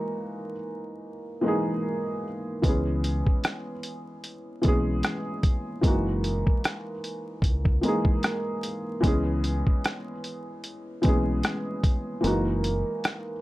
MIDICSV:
0, 0, Header, 1, 4, 480
1, 0, Start_track
1, 0, Tempo, 800000
1, 1580, Time_signature, 4, 2, 24, 8
1, 8049, End_track
2, 0, Start_track
2, 0, Title_t, "Felt piano"
2, 0, Program_c, 0, 0
2, 0, Control_c, 0, 64, 127
2, 0, Note_on_c, 0, 52, 81
2, 0, Note_on_c, 0, 56, 71
2, 0, Note_on_c, 0, 58, 76
2, 0, Note_on_c, 0, 63, 78
2, 0, Note_on_c, 0, 66, 87
2, 303, Note_off_c, 0, 52, 0
2, 307, Note_off_c, 0, 56, 0
2, 312, Note_off_c, 0, 58, 0
2, 317, Note_off_c, 0, 63, 0
2, 321, Note_off_c, 0, 66, 0
2, 848, Note_on_c, 0, 52, 83
2, 858, Note_on_c, 0, 56, 79
2, 868, Note_on_c, 0, 58, 69
2, 877, Note_on_c, 0, 63, 74
2, 887, Note_on_c, 0, 68, 93
2, 1336, Note_off_c, 0, 52, 0
2, 1341, Note_off_c, 0, 56, 0
2, 1345, Note_off_c, 0, 58, 0
2, 1350, Note_off_c, 0, 63, 0
2, 1355, Note_off_c, 0, 68, 0
2, 1573, Note_on_c, 0, 52, 83
2, 1582, Note_on_c, 0, 56, 70
2, 1588, Control_c, 0, 64, 0
2, 1593, Note_on_c, 0, 59, 74
2, 1602, Note_on_c, 0, 61, 84
2, 1612, Note_on_c, 0, 68, 84
2, 1698, Control_c, 0, 64, 127
2, 2228, Note_off_c, 0, 52, 0
2, 2232, Note_off_c, 0, 56, 0
2, 2238, Note_off_c, 0, 59, 0
2, 2242, Note_off_c, 0, 61, 0
2, 2247, Note_off_c, 0, 68, 0
2, 2769, Note_on_c, 0, 52, 84
2, 2779, Note_on_c, 0, 56, 78
2, 2789, Note_on_c, 0, 59, 70
2, 2799, Note_on_c, 0, 61, 70
2, 2808, Note_on_c, 0, 68, 102
2, 3256, Note_off_c, 0, 52, 0
2, 3261, Note_off_c, 0, 56, 0
2, 3266, Note_off_c, 0, 59, 0
2, 3271, Note_off_c, 0, 61, 0
2, 3276, Note_off_c, 0, 68, 0
2, 3488, Note_on_c, 0, 52, 91
2, 3497, Note_on_c, 0, 56, 79
2, 3507, Note_on_c, 0, 58, 74
2, 3509, Control_c, 0, 64, 0
2, 3517, Note_on_c, 0, 63, 71
2, 3527, Note_on_c, 0, 66, 91
2, 3626, Control_c, 0, 64, 127
2, 4145, Note_off_c, 0, 52, 0
2, 4150, Note_off_c, 0, 56, 0
2, 4155, Note_off_c, 0, 58, 0
2, 4160, Note_off_c, 0, 63, 0
2, 4165, Note_off_c, 0, 66, 0
2, 4689, Note_on_c, 0, 52, 72
2, 4698, Note_on_c, 0, 56, 80
2, 4707, Note_on_c, 0, 58, 71
2, 4719, Note_on_c, 0, 63, 72
2, 4729, Note_on_c, 0, 68, 99
2, 5176, Note_off_c, 0, 52, 0
2, 5181, Note_off_c, 0, 56, 0
2, 5185, Note_off_c, 0, 58, 0
2, 5191, Note_off_c, 0, 63, 0
2, 5196, Note_off_c, 0, 68, 0
2, 5404, Note_on_c, 0, 52, 89
2, 5414, Note_on_c, 0, 56, 85
2, 5423, Note_on_c, 0, 59, 74
2, 5427, Control_c, 0, 64, 0
2, 5433, Note_on_c, 0, 61, 85
2, 5443, Note_on_c, 0, 68, 93
2, 5521, Control_c, 0, 64, 127
2, 6063, Note_off_c, 0, 52, 0
2, 6068, Note_off_c, 0, 56, 0
2, 6073, Note_off_c, 0, 59, 0
2, 6077, Note_off_c, 0, 61, 0
2, 6083, Note_off_c, 0, 68, 0
2, 6611, Note_on_c, 0, 52, 83
2, 6620, Note_on_c, 0, 56, 82
2, 6630, Note_on_c, 0, 59, 77
2, 6641, Note_on_c, 0, 61, 80
2, 6650, Note_on_c, 0, 68, 100
2, 7097, Note_off_c, 0, 52, 0
2, 7102, Note_off_c, 0, 56, 0
2, 7107, Note_off_c, 0, 59, 0
2, 7112, Note_off_c, 0, 61, 0
2, 7116, Note_off_c, 0, 68, 0
2, 7324, Note_on_c, 0, 52, 83
2, 7334, Note_on_c, 0, 56, 72
2, 7343, Note_on_c, 0, 58, 81
2, 7347, Control_c, 0, 64, 0
2, 7353, Note_on_c, 0, 63, 74
2, 7362, Note_on_c, 0, 66, 85
2, 7451, Control_c, 0, 64, 127
2, 7983, Note_off_c, 0, 52, 0
2, 7988, Note_off_c, 0, 56, 0
2, 7993, Note_off_c, 0, 58, 0
2, 7997, Note_off_c, 0, 63, 0
2, 8002, Note_off_c, 0, 66, 0
2, 8049, End_track
3, 0, Start_track
3, 0, Title_t, "Fingered electric bass"
3, 0, Program_c, 1, 33
3, 1583, Note_on_c, 1, 37, 113
3, 1932, Note_off_c, 1, 37, 0
3, 2790, Note_on_c, 1, 35, 91
3, 3005, Note_off_c, 1, 35, 0
3, 3501, Note_on_c, 1, 30, 110
3, 3851, Note_off_c, 1, 30, 0
3, 4452, Note_on_c, 1, 37, 95
3, 4675, Note_off_c, 1, 37, 0
3, 5421, Note_on_c, 1, 37, 101
3, 5771, Note_off_c, 1, 37, 0
3, 6630, Note_on_c, 1, 35, 86
3, 6845, Note_off_c, 1, 35, 0
3, 7342, Note_on_c, 1, 30, 104
3, 7691, Note_off_c, 1, 30, 0
3, 8049, End_track
4, 0, Start_track
4, 0, Title_t, "Drums"
4, 1581, Note_on_c, 9, 36, 106
4, 1584, Note_on_c, 9, 42, 86
4, 1641, Note_off_c, 9, 36, 0
4, 1644, Note_off_c, 9, 42, 0
4, 1824, Note_on_c, 9, 42, 74
4, 1884, Note_off_c, 9, 42, 0
4, 1959, Note_on_c, 9, 36, 84
4, 2019, Note_off_c, 9, 36, 0
4, 2062, Note_on_c, 9, 42, 75
4, 2069, Note_on_c, 9, 37, 121
4, 2122, Note_off_c, 9, 42, 0
4, 2129, Note_off_c, 9, 37, 0
4, 2300, Note_on_c, 9, 42, 68
4, 2360, Note_off_c, 9, 42, 0
4, 2542, Note_on_c, 9, 42, 61
4, 2602, Note_off_c, 9, 42, 0
4, 2779, Note_on_c, 9, 42, 59
4, 2789, Note_on_c, 9, 36, 86
4, 2839, Note_off_c, 9, 42, 0
4, 2849, Note_off_c, 9, 36, 0
4, 3019, Note_on_c, 9, 42, 74
4, 3027, Note_on_c, 9, 37, 89
4, 3079, Note_off_c, 9, 42, 0
4, 3087, Note_off_c, 9, 37, 0
4, 3260, Note_on_c, 9, 36, 102
4, 3260, Note_on_c, 9, 42, 71
4, 3320, Note_off_c, 9, 36, 0
4, 3320, Note_off_c, 9, 42, 0
4, 3500, Note_on_c, 9, 36, 114
4, 3503, Note_on_c, 9, 42, 94
4, 3560, Note_off_c, 9, 36, 0
4, 3563, Note_off_c, 9, 42, 0
4, 3744, Note_on_c, 9, 42, 77
4, 3804, Note_off_c, 9, 42, 0
4, 3880, Note_on_c, 9, 36, 89
4, 3940, Note_off_c, 9, 36, 0
4, 3985, Note_on_c, 9, 42, 77
4, 3992, Note_on_c, 9, 37, 116
4, 4045, Note_off_c, 9, 42, 0
4, 4052, Note_off_c, 9, 37, 0
4, 4224, Note_on_c, 9, 42, 63
4, 4284, Note_off_c, 9, 42, 0
4, 4452, Note_on_c, 9, 36, 91
4, 4463, Note_on_c, 9, 42, 67
4, 4512, Note_off_c, 9, 36, 0
4, 4523, Note_off_c, 9, 42, 0
4, 4591, Note_on_c, 9, 36, 98
4, 4651, Note_off_c, 9, 36, 0
4, 4700, Note_on_c, 9, 42, 67
4, 4760, Note_off_c, 9, 42, 0
4, 4829, Note_on_c, 9, 36, 88
4, 4889, Note_off_c, 9, 36, 0
4, 4938, Note_on_c, 9, 42, 73
4, 4946, Note_on_c, 9, 37, 99
4, 4998, Note_off_c, 9, 42, 0
4, 5006, Note_off_c, 9, 37, 0
4, 5180, Note_on_c, 9, 42, 79
4, 5240, Note_off_c, 9, 42, 0
4, 5420, Note_on_c, 9, 36, 110
4, 5422, Note_on_c, 9, 42, 90
4, 5480, Note_off_c, 9, 36, 0
4, 5482, Note_off_c, 9, 42, 0
4, 5664, Note_on_c, 9, 42, 81
4, 5724, Note_off_c, 9, 42, 0
4, 5800, Note_on_c, 9, 36, 84
4, 5860, Note_off_c, 9, 36, 0
4, 5906, Note_on_c, 9, 42, 76
4, 5913, Note_on_c, 9, 37, 123
4, 5966, Note_off_c, 9, 42, 0
4, 5973, Note_off_c, 9, 37, 0
4, 6144, Note_on_c, 9, 42, 64
4, 6204, Note_off_c, 9, 42, 0
4, 6382, Note_on_c, 9, 42, 66
4, 6442, Note_off_c, 9, 42, 0
4, 6618, Note_on_c, 9, 42, 62
4, 6628, Note_on_c, 9, 36, 86
4, 6678, Note_off_c, 9, 42, 0
4, 6688, Note_off_c, 9, 36, 0
4, 6860, Note_on_c, 9, 42, 74
4, 6869, Note_on_c, 9, 37, 93
4, 6920, Note_off_c, 9, 42, 0
4, 6929, Note_off_c, 9, 37, 0
4, 7101, Note_on_c, 9, 36, 96
4, 7102, Note_on_c, 9, 42, 69
4, 7161, Note_off_c, 9, 36, 0
4, 7162, Note_off_c, 9, 42, 0
4, 7345, Note_on_c, 9, 42, 84
4, 7405, Note_off_c, 9, 42, 0
4, 7584, Note_on_c, 9, 42, 75
4, 7644, Note_off_c, 9, 42, 0
4, 7824, Note_on_c, 9, 42, 76
4, 7831, Note_on_c, 9, 37, 121
4, 7884, Note_off_c, 9, 42, 0
4, 7891, Note_off_c, 9, 37, 0
4, 8049, End_track
0, 0, End_of_file